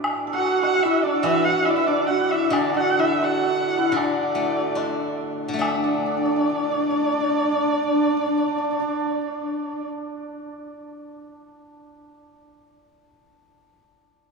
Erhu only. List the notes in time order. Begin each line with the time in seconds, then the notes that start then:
0.34 F#5
0.65 F#5
0.83 E5
1.03 D5
1.23 E5
1.44 F#5
1.65 E5
1.70 D5
1.76 E5
1.87 D5
2.07 F#5
2.31 E5
2.51 D5
2.77 F#5
3.00 E5
3.24 F#5
3.98 D5
5.63 D5